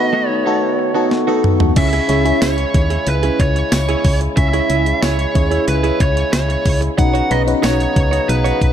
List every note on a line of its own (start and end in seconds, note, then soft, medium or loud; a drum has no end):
0.00 1.74 D#3 medium
0.00 1.73 A3 medium
0.00 0.46 B3 medium
0.00 1.74 B3 medium
0.00 0.46 D#4 medium
0.00 0.46 F#4 medium
0.00 1.73 F#4 medium
0.00 0.47 A4 loud
0.00 0.41 B4 loud
0.00 0.28 D#5 medium
0.13 0.29 A3 medium
0.13 0.28 D#4 medium
0.13 0.28 F#4 loud
0.28 0.44 A3 medium
0.28 0.44 D#4 medium
0.28 0.44 F#4 medium
0.28 1.08 C#5 medium
0.45 0.64 A3 medium
0.45 0.89 B3 medium
0.45 0.61 D#4 medium
0.45 0.89 D#4 medium
0.45 0.61 F#4 medium
0.45 0.89 F#4 medium
0.45 0.90 A4 loud
0.62 muted clean electric guitar stroke soft
0.79 muted clean electric guitar stroke soft
0.94 1.10 A3 soft
0.94 1.23 B3 medium
0.94 1.24 D#4 medium
0.94 1.10 D#4 medium
0.94 1.09 F#4 medium
0.94 1.24 F#4 medium
0.94 1.24 A4 medium
1.11 muted clean electric guitar stroke soft
1.11 snare medium
1.27 1.43 A3 medium
1.27 1.70 B3 medium
1.27 1.71 D#4 medium
1.27 1.44 D#4 medium
1.27 1.44 F#4 medium
1.27 1.71 F#4 medium
1.27 1.71 A4 loud
1.44 muted clean electric guitar stroke soft
1.44 mid tom loud
1.60 muted clean electric guitar stroke soft
1.60 floor tom medium
1.76 2.00 C#2 loud
1.76 8.73 C#3 medium
1.76 6.95 G#3 medium
1.76 2.05 C#4 medium
1.76 2.05 E4 medium
1.76 6.95 E4 medium
1.76 2.05 G#4 medium
1.76 2.06 C#5 medium
1.76 2.42 E5 medium
1.76 muted clean electric guitar stroke soft
1.76 kick loud
1.76 closed hi-hat medium
1.76 crash medium
1.93 2.08 C#4 medium
1.93 2.09 E4 medium
1.93 2.09 G#4 medium
1.93 closed hi-hat medium
2.08 2.33 C#2 loud
2.08 2.23 C#4 medium
2.08 2.24 C#4 medium
2.08 2.23 E4 medium
2.08 2.24 E4 medium
2.08 2.23 G#4 medium
2.08 2.24 G#4 medium
2.08 2.24 C#5 medium
2.08 closed hi-hat medium
2.25 3.40 C#4 medium
2.25 3.40 E4 medium
2.25 3.40 G#4 medium
2.25 3.41 C#5 medium
2.25 muted clean electric guitar stroke soft
2.25 closed hi-hat medium
2.42 2.65 C#2 loud
2.42 2.60 C#4 medium
2.42 2.57 E4 medium
2.42 2.57 G#4 medium
2.42 3.09 C#5 medium
2.42 snare loud
2.42 closed hi-hat medium
2.42 tambourine medium
2.58 muted clean electric guitar stroke soft
2.58 closed hi-hat medium
2.74 2.98 D#2 medium
2.74 muted clean electric guitar stroke soft
2.74 kick medium
2.74 closed hi-hat medium
2.90 3.06 C#4 soft
2.90 3.05 E4 medium
2.90 3.05 G#4 medium
2.90 closed hi-hat medium
3.07 3.30 C#2 loud
3.07 3.41 B4 medium
3.07 muted clean electric guitar stroke soft
3.07 closed hi-hat medium
3.23 3.38 C#4 medium
3.23 3.39 E4 medium
3.23 3.39 G#4 medium
3.23 closed hi-hat medium
3.39 3.63 C#2 loud
3.39 3.71 C#5 medium
3.39 muted clean electric guitar stroke soft
3.39 kick medium
3.39 closed hi-hat medium
3.56 muted clean electric guitar stroke soft
3.56 closed hi-hat medium
3.72 3.96 C#2 loud
3.72 4.18 C#5 medium
3.72 muted clean electric guitar stroke soft
3.72 snare loud
3.72 closed hi-hat medium
3.72 tambourine medium
3.89 4.03 C#4 medium
3.89 4.04 E4 medium
3.89 4.04 G#4 medium
3.89 closed hi-hat soft
4.04 4.28 C#2 loud
4.04 muted clean electric guitar stroke soft
4.04 kick medium
4.04 open hi-hat medium
4.21 muted clean electric guitar stroke soft
4.21 closed hi-hat medium
4.37 4.61 C#2 loud
4.37 4.51 C#4 medium
4.37 4.52 E4 medium
4.37 4.52 G#4 medium
4.37 4.52 C#5 medium
4.37 5.02 E5 loud
4.37 muted clean electric guitar stroke soft
4.37 kick loud
4.37 closed hi-hat medium
4.53 5.25 C#4 medium
4.53 4.68 C#4 medium
4.53 5.25 E4 medium
4.53 4.69 E4 medium
4.53 4.70 G#4 medium
4.53 5.25 G#4 medium
4.53 5.26 C#5 medium
4.53 closed hi-hat medium
4.70 4.93 C#2 loud
4.70 4.84 C#4 medium
4.70 4.85 E4 medium
4.70 4.85 G#4 medium
4.70 closed hi-hat medium
4.86 muted clean electric guitar stroke soft
4.86 closed hi-hat medium
5.02 5.26 C#2 medium
5.02 5.21 C#4 medium
5.02 5.18 E4 medium
5.02 5.17 G#4 medium
5.02 5.64 C#5 medium
5.02 snare loud
5.02 closed hi-hat medium
5.02 tambourine medium
5.18 muted clean electric guitar stroke soft
5.18 closed hi-hat medium
5.34 5.59 D#2 medium
5.34 6.50 C#4 medium
5.34 6.50 E4 medium
5.34 6.50 G#4 medium
5.34 6.50 C#5 medium
5.34 muted clean electric guitar stroke soft
5.34 kick medium
5.34 closed hi-hat medium
5.51 5.66 C#4 soft
5.51 5.66 E4 medium
5.51 5.66 G#4 medium
5.51 closed hi-hat medium
5.67 5.91 C#2 loud
5.67 6.02 B4 medium
5.67 muted clean electric guitar stroke soft
5.67 closed hi-hat medium
5.83 5.99 C#4 medium
5.83 5.99 E4 medium
5.83 6.00 G#4 medium
5.83 closed hi-hat soft
6.00 6.24 C#2 loud
6.00 6.31 C#5 medium
6.00 kick medium
6.00 closed hi-hat medium
6.16 muted clean electric guitar stroke soft
6.16 closed hi-hat medium
6.33 6.57 C#2 loud
6.33 6.79 C#5 medium
6.33 muted clean electric guitar stroke soft
6.33 snare loud
6.33 closed hi-hat loud
6.33 tambourine medium
6.49 muted clean electric guitar stroke medium
6.49 closed hi-hat medium
6.66 6.89 C#2 loud
6.66 kick loud
6.66 open hi-hat medium
6.81 muted clean electric guitar stroke medium
6.81 closed hi-hat medium
6.98 7.22 B1 loud
6.98 8.73 F#3 medium
6.98 8.73 B3 medium
6.98 7.27 C#4 medium
6.98 7.27 D#4 medium
6.98 8.73 D#4 medium
6.98 7.27 F#4 medium
6.98 7.27 B4 medium
6.98 7.32 F#5 loud
6.98 muted clean electric guitar stroke soft
6.98 kick loud
6.98 closed hi-hat medium
7.14 7.29 D#4 medium
7.14 7.30 F#4 medium
7.14 7.30 C#5 medium
7.14 closed hi-hat medium
7.30 7.54 B1 loud
7.30 7.45 C#4 medium
7.30 7.45 D#4 medium
7.30 7.45 F#4 medium
7.30 7.46 B4 medium
7.30 7.46 C#5 medium
7.30 7.40 D#5 loud
7.30 closed hi-hat medium
7.47 8.62 C#4 medium
7.47 8.62 D#4 medium
7.47 8.62 F#4 medium
7.47 8.63 B4 medium
7.47 muted clean electric guitar stroke soft
7.47 closed hi-hat medium
7.62 7.87 B1 medium
7.62 7.82 D#4 medium
7.62 7.79 F#4 loud
7.62 8.31 C#5 loud
7.62 7.78 C#5 loud
7.62 snare loud
7.62 closed hi-hat medium
7.62 tambourine medium
7.79 muted clean electric guitar stroke medium
7.79 closed hi-hat medium
7.96 8.20 C#2 medium
7.96 muted clean electric guitar stroke soft
7.96 kick medium
7.96 closed hi-hat medium
8.11 8.27 D#4 medium
8.11 8.27 F#4 medium
8.11 8.26 C#5 medium
8.11 closed hi-hat medium
8.28 8.52 B1 loud
8.28 8.73 B4 medium
8.28 muted clean electric guitar stroke soft
8.28 closed hi-hat medium
8.44 8.59 D#4 medium
8.44 8.60 F#4 medium
8.44 8.60 C#5 medium
8.44 closed hi-hat soft
8.61 8.73 B1 loud
8.61 kick medium
8.61 closed hi-hat medium